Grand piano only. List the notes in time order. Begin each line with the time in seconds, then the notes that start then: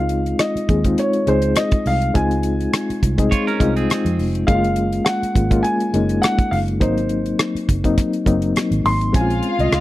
Already playing: F5
0.40 D#5
0.99 C#5
1.28 C5
1.57 D#5
1.87 F5
2.16 G#5
4.47 F5
5.05 F#5
5.63 G#5
6.22 F#5
6.51 F5
6.81 C5
8.86 C6
9.16 G#5
9.60 D#5